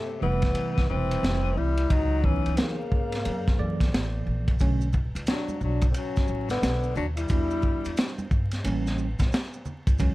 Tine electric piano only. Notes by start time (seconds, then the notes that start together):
0.21 C3 E3 G3 A3
1.22 E3 G3 A3 C4
2.24 D#3 F#3 B3 D#4
2.31 E3
3.58 E3 A#3 A4 D5
4.60 D3 F#3 A3 C#4
7.30 G3 B3 D4 F#4
8.64 E3 G3 A#3 C#4
9.99 E3 F#3 G#3 C#4